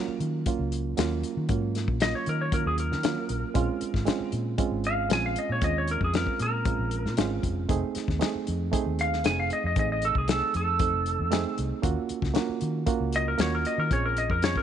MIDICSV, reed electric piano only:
0, 0, Header, 1, 2, 480
1, 0, Start_track
1, 0, Key_signature, -5, "minor"
1, 0, Tempo, 517241
1, 1388, Time_signature, 4, 2, 24, 8
1, 13573, End_track
2, 0, Start_track
2, 0, Title_t, "Reed electric piano"
2, 0, Program_c, 0, 4
2, 0, Note_on_c, 0, 54, 91
2, 0, Note_on_c, 0, 58, 82
2, 0, Note_on_c, 0, 61, 81
2, 0, Note_on_c, 0, 65, 96
2, 393, Note_off_c, 0, 54, 0
2, 396, Note_off_c, 0, 58, 0
2, 398, Note_off_c, 0, 61, 0
2, 399, Note_off_c, 0, 65, 0
2, 427, Note_on_c, 0, 54, 80
2, 433, Note_on_c, 0, 58, 78
2, 441, Note_on_c, 0, 61, 80
2, 445, Note_on_c, 0, 65, 93
2, 870, Note_off_c, 0, 54, 0
2, 873, Note_off_c, 0, 58, 0
2, 877, Note_off_c, 0, 61, 0
2, 879, Note_off_c, 0, 65, 0
2, 900, Note_on_c, 0, 54, 87
2, 908, Note_on_c, 0, 58, 91
2, 912, Note_on_c, 0, 61, 86
2, 918, Note_on_c, 0, 65, 106
2, 1346, Note_off_c, 0, 54, 0
2, 1350, Note_off_c, 0, 58, 0
2, 1352, Note_off_c, 0, 61, 0
2, 1355, Note_off_c, 0, 65, 0
2, 1380, Note_on_c, 0, 54, 80
2, 1387, Note_on_c, 0, 58, 77
2, 1393, Note_on_c, 0, 61, 74
2, 1399, Note_on_c, 0, 65, 84
2, 1826, Note_off_c, 0, 54, 0
2, 1829, Note_off_c, 0, 58, 0
2, 1832, Note_off_c, 0, 61, 0
2, 1835, Note_off_c, 0, 65, 0
2, 1861, Note_on_c, 0, 54, 68
2, 1867, Note_on_c, 0, 58, 65
2, 1869, Note_on_c, 0, 61, 60
2, 1876, Note_on_c, 0, 65, 81
2, 2305, Note_off_c, 0, 54, 0
2, 2309, Note_off_c, 0, 58, 0
2, 2310, Note_off_c, 0, 61, 0
2, 2313, Note_off_c, 0, 65, 0
2, 2336, Note_on_c, 0, 54, 66
2, 2342, Note_on_c, 0, 58, 65
2, 2348, Note_on_c, 0, 61, 64
2, 2356, Note_on_c, 0, 65, 69
2, 2783, Note_off_c, 0, 54, 0
2, 2786, Note_off_c, 0, 58, 0
2, 2788, Note_off_c, 0, 61, 0
2, 2792, Note_off_c, 0, 65, 0
2, 2816, Note_on_c, 0, 54, 80
2, 2819, Note_on_c, 0, 58, 76
2, 2823, Note_on_c, 0, 61, 77
2, 2829, Note_on_c, 0, 65, 83
2, 3262, Note_off_c, 0, 54, 0
2, 3264, Note_off_c, 0, 58, 0
2, 3266, Note_off_c, 0, 61, 0
2, 3269, Note_off_c, 0, 65, 0
2, 3287, Note_on_c, 0, 56, 95
2, 3291, Note_on_c, 0, 60, 86
2, 3296, Note_on_c, 0, 61, 95
2, 3302, Note_on_c, 0, 65, 116
2, 3738, Note_off_c, 0, 56, 0
2, 3739, Note_off_c, 0, 60, 0
2, 3742, Note_off_c, 0, 61, 0
2, 3745, Note_off_c, 0, 65, 0
2, 3763, Note_on_c, 0, 56, 84
2, 3770, Note_on_c, 0, 60, 89
2, 3773, Note_on_c, 0, 61, 78
2, 3782, Note_on_c, 0, 65, 89
2, 4215, Note_off_c, 0, 56, 0
2, 4219, Note_off_c, 0, 60, 0
2, 4220, Note_off_c, 0, 61, 0
2, 4225, Note_off_c, 0, 65, 0
2, 4248, Note_on_c, 0, 56, 90
2, 4258, Note_on_c, 0, 60, 85
2, 4259, Note_on_c, 0, 61, 94
2, 4264, Note_on_c, 0, 65, 96
2, 4698, Note_off_c, 0, 56, 0
2, 4703, Note_off_c, 0, 60, 0
2, 4703, Note_off_c, 0, 61, 0
2, 4705, Note_off_c, 0, 65, 0
2, 4726, Note_on_c, 0, 56, 79
2, 4731, Note_on_c, 0, 60, 70
2, 4739, Note_on_c, 0, 61, 77
2, 4743, Note_on_c, 0, 65, 87
2, 5177, Note_off_c, 0, 56, 0
2, 5179, Note_off_c, 0, 60, 0
2, 5183, Note_off_c, 0, 61, 0
2, 5185, Note_off_c, 0, 65, 0
2, 5208, Note_on_c, 0, 56, 70
2, 5212, Note_on_c, 0, 60, 65
2, 5217, Note_on_c, 0, 61, 59
2, 5224, Note_on_c, 0, 65, 76
2, 5657, Note_off_c, 0, 56, 0
2, 5660, Note_off_c, 0, 60, 0
2, 5662, Note_off_c, 0, 61, 0
2, 5666, Note_off_c, 0, 65, 0
2, 5694, Note_on_c, 0, 56, 69
2, 5701, Note_on_c, 0, 60, 65
2, 5705, Note_on_c, 0, 61, 63
2, 5712, Note_on_c, 0, 65, 74
2, 6140, Note_off_c, 0, 56, 0
2, 6144, Note_off_c, 0, 60, 0
2, 6146, Note_off_c, 0, 61, 0
2, 6150, Note_off_c, 0, 65, 0
2, 6178, Note_on_c, 0, 56, 70
2, 6184, Note_on_c, 0, 60, 62
2, 6188, Note_on_c, 0, 61, 63
2, 6193, Note_on_c, 0, 65, 79
2, 6622, Note_off_c, 0, 56, 0
2, 6625, Note_off_c, 0, 60, 0
2, 6628, Note_off_c, 0, 61, 0
2, 6630, Note_off_c, 0, 65, 0
2, 6659, Note_on_c, 0, 56, 87
2, 6662, Note_on_c, 0, 60, 84
2, 6665, Note_on_c, 0, 61, 90
2, 6672, Note_on_c, 0, 65, 102
2, 7103, Note_off_c, 0, 56, 0
2, 7105, Note_off_c, 0, 60, 0
2, 7107, Note_off_c, 0, 61, 0
2, 7110, Note_off_c, 0, 65, 0
2, 7133, Note_on_c, 0, 57, 100
2, 7140, Note_on_c, 0, 60, 93
2, 7143, Note_on_c, 0, 63, 88
2, 7150, Note_on_c, 0, 68, 108
2, 7581, Note_off_c, 0, 57, 0
2, 7584, Note_off_c, 0, 60, 0
2, 7585, Note_off_c, 0, 63, 0
2, 7589, Note_off_c, 0, 68, 0
2, 7606, Note_on_c, 0, 57, 88
2, 7609, Note_on_c, 0, 60, 75
2, 7618, Note_on_c, 0, 63, 74
2, 7622, Note_on_c, 0, 68, 97
2, 8057, Note_off_c, 0, 57, 0
2, 8059, Note_off_c, 0, 60, 0
2, 8064, Note_off_c, 0, 63, 0
2, 8065, Note_off_c, 0, 68, 0
2, 8090, Note_on_c, 0, 57, 101
2, 8096, Note_on_c, 0, 60, 84
2, 8101, Note_on_c, 0, 63, 88
2, 8104, Note_on_c, 0, 68, 103
2, 8540, Note_off_c, 0, 57, 0
2, 8543, Note_off_c, 0, 60, 0
2, 8545, Note_off_c, 0, 63, 0
2, 8546, Note_off_c, 0, 68, 0
2, 8573, Note_on_c, 0, 57, 78
2, 8579, Note_on_c, 0, 60, 74
2, 8584, Note_on_c, 0, 63, 70
2, 8591, Note_on_c, 0, 68, 97
2, 9021, Note_off_c, 0, 57, 0
2, 9025, Note_off_c, 0, 60, 0
2, 9027, Note_off_c, 0, 63, 0
2, 9030, Note_off_c, 0, 68, 0
2, 9060, Note_on_c, 0, 57, 68
2, 9067, Note_on_c, 0, 60, 72
2, 9071, Note_on_c, 0, 63, 65
2, 9079, Note_on_c, 0, 68, 74
2, 9505, Note_off_c, 0, 57, 0
2, 9509, Note_off_c, 0, 60, 0
2, 9511, Note_off_c, 0, 63, 0
2, 9515, Note_off_c, 0, 68, 0
2, 9539, Note_on_c, 0, 57, 73
2, 9545, Note_on_c, 0, 60, 58
2, 9551, Note_on_c, 0, 63, 67
2, 9557, Note_on_c, 0, 68, 85
2, 9985, Note_off_c, 0, 57, 0
2, 9988, Note_off_c, 0, 60, 0
2, 9991, Note_off_c, 0, 63, 0
2, 9994, Note_off_c, 0, 68, 0
2, 10014, Note_on_c, 0, 57, 68
2, 10022, Note_on_c, 0, 60, 71
2, 10027, Note_on_c, 0, 63, 66
2, 10032, Note_on_c, 0, 69, 82
2, 10463, Note_off_c, 0, 57, 0
2, 10467, Note_off_c, 0, 60, 0
2, 10470, Note_off_c, 0, 63, 0
2, 10472, Note_off_c, 0, 69, 0
2, 10491, Note_on_c, 0, 57, 102
2, 10497, Note_on_c, 0, 60, 98
2, 10502, Note_on_c, 0, 63, 86
2, 10509, Note_on_c, 0, 68, 112
2, 10942, Note_off_c, 0, 57, 0
2, 10945, Note_off_c, 0, 60, 0
2, 10948, Note_off_c, 0, 63, 0
2, 10951, Note_off_c, 0, 68, 0
2, 10972, Note_on_c, 0, 58, 94
2, 10975, Note_on_c, 0, 61, 89
2, 10982, Note_on_c, 0, 65, 96
2, 10986, Note_on_c, 0, 66, 102
2, 11423, Note_off_c, 0, 58, 0
2, 11424, Note_off_c, 0, 61, 0
2, 11428, Note_off_c, 0, 65, 0
2, 11430, Note_off_c, 0, 66, 0
2, 11448, Note_on_c, 0, 58, 97
2, 11454, Note_on_c, 0, 61, 83
2, 11461, Note_on_c, 0, 65, 86
2, 11467, Note_on_c, 0, 66, 98
2, 11901, Note_off_c, 0, 58, 0
2, 11904, Note_off_c, 0, 61, 0
2, 11908, Note_off_c, 0, 65, 0
2, 11911, Note_off_c, 0, 66, 0
2, 11939, Note_on_c, 0, 58, 103
2, 11944, Note_on_c, 0, 61, 82
2, 11950, Note_on_c, 0, 65, 86
2, 11954, Note_on_c, 0, 66, 96
2, 12387, Note_off_c, 0, 58, 0
2, 12390, Note_off_c, 0, 61, 0
2, 12392, Note_off_c, 0, 65, 0
2, 12394, Note_off_c, 0, 66, 0
2, 12416, Note_on_c, 0, 58, 86
2, 12422, Note_on_c, 0, 61, 72
2, 12426, Note_on_c, 0, 65, 75
2, 12432, Note_on_c, 0, 66, 94
2, 12866, Note_off_c, 0, 58, 0
2, 12869, Note_off_c, 0, 61, 0
2, 12871, Note_off_c, 0, 65, 0
2, 12874, Note_off_c, 0, 66, 0
2, 12904, Note_on_c, 0, 60, 70
2, 12908, Note_on_c, 0, 61, 64
2, 12913, Note_on_c, 0, 65, 64
2, 12920, Note_on_c, 0, 68, 80
2, 13350, Note_off_c, 0, 60, 0
2, 13352, Note_off_c, 0, 61, 0
2, 13355, Note_off_c, 0, 65, 0
2, 13358, Note_off_c, 0, 68, 0
2, 13386, Note_on_c, 0, 60, 69
2, 13390, Note_on_c, 0, 61, 60
2, 13394, Note_on_c, 0, 65, 66
2, 13399, Note_on_c, 0, 68, 74
2, 13573, Note_off_c, 0, 60, 0
2, 13573, Note_off_c, 0, 61, 0
2, 13573, Note_off_c, 0, 65, 0
2, 13573, Note_off_c, 0, 68, 0
2, 13573, End_track
0, 0, End_of_file